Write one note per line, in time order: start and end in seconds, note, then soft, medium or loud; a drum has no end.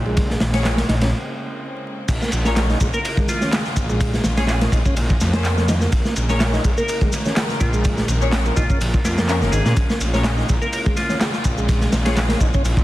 0.00 0.35 A#1 medium
0.00 2.05 C#3 medium
0.00 2.05 G#3 medium
0.00 2.05 A#3 medium
0.00 2.07 C4 medium
0.06 0.28 G#3 loud
0.17 kick loud
0.17 ride medium
0.30 0.40 G#3 medium
0.30 snare soft
0.30 high conga medium
0.40 0.83 A#1 medium
0.40 snare loud
0.40 ride medium
0.40 low conga medium
0.54 0.60 C#4 medium
0.54 0.60 G#4 medium
0.54 0.60 C#5 medium
0.54 snare loud
0.54 ride medium
0.65 snare loud
0.65 clap loud
0.65 ride medium
0.77 0.87 A#3 medium
0.77 snare medium
0.77 ride medium
0.89 1.13 A#1 medium
0.89 0.95 D#4 medium
0.89 snare loud
0.89 ride medium
1.01 1.11 C#4 medium
1.01 snare loud
1.01 ride medium
2.08 2.17 A#1 loud
2.08 12.84 C#3 medium
2.08 12.84 G#3 medium
2.08 12.84 A#3 medium
2.08 5.92 F4 medium
2.08 kick loud
2.08 crash medium
2.08 ride medium
2.08 shaker soft
2.22 2.31 A#3 medium
2.22 snare medium
2.22 high conga medium
2.22 shaker soft
2.32 2.75 A#1 medium
2.32 ride medium
2.32 shaker medium
2.45 2.56 C#4 medium
2.45 2.56 G#4 medium
2.45 2.56 A#4 medium
2.45 2.63 C#5 medium
2.45 snare soft
2.45 shaker soft
2.57 2.67 G#3 medium
2.57 snare loud
2.57 clap loud
2.57 ride medium
2.57 shaker soft
2.69 2.79 D#4 medium
2.69 snare medium
2.69 shaker soft
2.80 2.89 A#1 medium
2.80 2.87 G#3 medium
2.80 kick medium
2.80 ride medium
2.80 shaker medium
2.94 2.99 A#3 medium
2.94 3.01 A#4 medium
2.94 shaker soft
3.05 3.13 A#4 medium
3.05 ride loud
3.05 shaker soft
3.17 3.28 G#3 medium
3.17 kick loud
3.17 high conga medium
3.17 low conga medium
3.17 shaker soft
3.28 3.47 F4 medium
3.28 snare soft
3.28 ride medium
3.28 high conga medium
3.28 shaker medium
3.41 3.51 C#4 medium
3.41 snare soft
3.41 low conga medium
3.41 shaker soft
3.52 3.63 G#3 medium
3.52 snare loud
3.52 clap loud
3.52 ride medium
3.52 shaker soft
3.65 snare soft
3.65 high conga medium
3.65 shaker soft
3.76 4.19 A#1 medium
3.76 kick medium
3.76 ride medium
3.76 shaker medium
3.90 4.12 G#3 loud
3.90 shaker soft
4.01 kick loud
4.01 ride medium
4.01 shaker soft
4.14 4.24 G#3 medium
4.14 snare medium
4.14 high conga medium
4.14 shaker soft
4.24 4.67 A#1 medium
4.24 snare loud
4.24 ride medium
4.24 low conga medium
4.24 shaker medium
4.37 4.44 C#4 medium
4.37 4.44 G#4 medium
4.37 4.45 G#4 medium
4.37 4.44 C#5 loud
4.37 snare loud
4.37 ride medium
4.37 shaker soft
4.47 4.57 G#4 medium
4.47 snare medium
4.47 clap loud
4.47 ride medium
4.47 shaker soft
4.61 4.71 A#3 medium
4.61 snare loud
4.61 ride medium
4.61 shaker soft
4.72 4.81 A#1 medium
4.72 4.79 D#4 medium
4.72 kick medium
4.72 ride medium
4.72 shaker medium
4.86 4.95 C#4 medium
4.86 kick medium
4.86 shaker soft
4.96 5.13 A#1 medium
4.96 ride loud
4.96 shaker soft
5.10 kick medium
5.10 shaker soft
5.21 5.87 F2 loud
5.21 snare medium
5.21 ride medium
5.21 shaker medium
5.33 5.56 A#3 medium
5.33 5.44 C#4 medium
5.33 5.44 G#4 medium
5.33 5.44 C5 medium
5.33 snare loud
5.33 high conga loud
5.33 shaker soft
5.45 clap loud
5.45 ride medium
5.45 shaker soft
5.58 5.68 A#3 loud
5.58 snare soft
5.58 shaker soft
5.68 5.75 D#4 medium
5.68 snare loud
5.68 ride medium
5.68 low conga loud
5.68 shaker medium
5.81 5.91 A#3 medium
5.81 snare medium
5.81 shaker soft
5.92 6.01 A#1 loud
5.92 9.75 A#4 medium
5.92 kick loud
5.92 ride medium
5.92 shaker soft
6.05 6.14 A#3 medium
6.05 snare medium
6.05 high conga medium
6.05 shaker soft
6.16 6.59 A#1 medium
6.16 ride medium
6.16 shaker medium
6.29 6.40 C#4 medium
6.29 6.40 G#4 medium
6.29 6.40 A#4 medium
6.29 6.47 C#5 medium
6.29 snare soft
6.29 shaker soft
6.40 6.51 G#3 medium
6.40 snare loud
6.40 clap loud
6.40 ride loud
6.40 shaker soft
6.53 6.63 D#4 medium
6.53 snare medium
6.53 shaker soft
6.64 6.73 A#1 medium
6.64 6.71 G#3 medium
6.64 kick loud
6.64 ride medium
6.64 shaker medium
6.77 6.83 A#3 medium
6.77 6.85 A#4 medium
6.77 shaker soft
6.88 6.97 A#4 medium
6.88 ride medium
6.88 shaker soft
7.01 7.12 G#3 medium
7.01 kick medium
7.01 high conga loud
7.01 low conga medium
7.01 shaker soft
7.12 snare soft
7.12 ride medium
7.12 high conga loud
7.12 shaker medium
7.25 7.35 C#4 medium
7.25 snare soft
7.25 low conga medium
7.25 shaker soft
7.36 7.47 G#3 medium
7.36 snare loud
7.36 clap loud
7.36 ride medium
7.36 shaker soft
7.49 snare soft
7.49 high conga medium
7.49 shaker soft
7.60 8.03 A#1 medium
7.60 7.79 F4 medium
7.60 kick loud
7.60 ride medium
7.60 shaker medium
7.74 7.96 G#3 loud
7.74 shaker soft
7.84 kick loud
7.84 ride medium
7.84 shaker soft
7.97 8.08 G#3 medium
7.97 snare soft
7.97 high conga medium
7.97 shaker soft
8.08 8.51 A#1 medium
8.08 ride medium
8.08 low conga medium
8.08 shaker medium
8.22 8.28 C#4 medium
8.22 8.28 G#4 medium
8.22 8.28 C#5 loud
8.22 shaker soft
8.32 snare loud
8.32 clap loud
8.32 ride medium
8.32 shaker soft
8.45 8.55 A#3 medium
8.45 ride soft
8.45 shaker soft
8.56 8.66 A#1 medium
8.56 8.63 D#4 medium
8.56 8.75 F4 medium
8.56 kick medium
8.56 ride medium
8.56 shaker medium
8.70 8.79 C#4 medium
8.70 kick loud
8.70 shaker soft
8.81 8.97 A#1 medium
8.81 ride loud
8.81 shaker soft
8.94 kick medium
8.94 shaker soft
9.05 9.43 F2 loud
9.05 9.23 F4 medium
9.05 snare medium
9.05 ride medium
9.05 shaker medium
9.17 9.40 A#3 medium
9.17 snare loud
9.17 high conga medium
9.17 shaker soft
9.28 9.40 C#4 loud
9.28 9.40 G#4 medium
9.28 9.40 A#4 loud
9.28 clap loud
9.28 ride medium
9.28 shaker soft
9.41 9.49 F1 loud
9.41 9.52 A#3 loud
9.41 9.48 C#4 medium
9.41 9.48 G#4 medium
9.41 9.48 A#4 medium
9.41 snare medium
9.41 low conga medium
9.41 shaker soft
9.52 9.61 G#1 loud
9.52 9.59 D#4 medium
9.52 9.61 G#4 medium
9.52 ride medium
9.52 low conga medium
9.52 shaker medium
9.66 9.73 A#2 medium
9.66 9.75 A#3 medium
9.66 9.73 G#4 medium
9.66 snare medium
9.66 shaker soft
9.77 9.85 A#1 loud
9.77 12.84 F4 medium
9.77 kick loud
9.77 ride medium
9.77 shaker soft
9.89 9.99 A#3 medium
9.89 snare medium
9.89 high conga medium
9.89 shaker soft
10.01 10.43 A#1 medium
10.01 ride medium
10.01 shaker medium
10.14 10.24 C#4 medium
10.14 10.24 G#4 medium
10.14 10.24 A#4 medium
10.14 10.31 C#5 medium
10.14 snare soft
10.14 shaker soft
10.24 10.35 G#3 medium
10.24 snare loud
10.24 clap loud
10.24 ride medium
10.24 shaker soft
10.38 10.47 D#4 medium
10.38 snare medium
10.38 shaker soft
10.49 10.58 A#1 medium
10.49 10.55 G#3 medium
10.49 kick medium
10.49 ride medium
10.49 shaker medium
10.62 10.67 A#3 medium
10.62 10.69 A#4 medium
10.62 shaker soft
10.72 10.81 A#4 medium
10.72 ride medium
10.72 shaker soft
10.86 10.96 G#3 medium
10.86 kick medium
10.86 high conga loud
10.86 low conga medium
10.86 shaker soft
10.97 11.15 F4 medium
10.97 snare soft
10.97 ride medium
10.97 high conga medium
10.97 shaker medium
11.09 11.19 C#4 medium
11.09 snare soft
11.09 low conga medium
11.09 shaker soft
11.21 11.31 G#3 medium
11.21 snare loud
11.21 clap loud
11.21 ride medium
11.21 shaker soft
11.34 snare medium
11.34 high conga medium
11.34 shaker soft
11.44 11.87 A#1 medium
11.44 kick medium
11.44 ride medium
11.44 shaker medium
11.58 11.80 G#3 loud
11.58 shaker soft
11.69 kick loud
11.69 ride medium
11.69 shaker soft
11.81 11.92 G#3 medium
11.81 snare soft
11.81 high conga medium
11.81 shaker soft
11.92 12.35 A#1 medium
11.92 snare loud
11.92 ride medium
11.92 low conga medium
11.92 shaker medium
12.05 12.12 C#4 medium
12.05 12.13 G#4 medium
12.05 12.12 G#4 medium
12.05 12.12 C#5 medium
12.05 snare loud
12.05 ride medium
12.05 shaker soft
12.16 12.25 G#4 medium
12.16 snare loud
12.16 clap loud
12.16 ride medium
12.16 shaker soft
12.29 12.39 A#3 medium
12.29 snare loud
12.29 ride medium
12.29 shaker soft
12.40 12.49 A#1 medium
12.40 12.47 D#4 medium
12.40 kick medium
12.40 ride medium
12.40 shaker medium
12.54 12.63 C#4 medium
12.54 kick medium
12.54 shaker soft
12.65 12.81 A#1 medium
12.65 ride medium
12.65 shaker soft
12.77 kick medium
12.77 shaker soft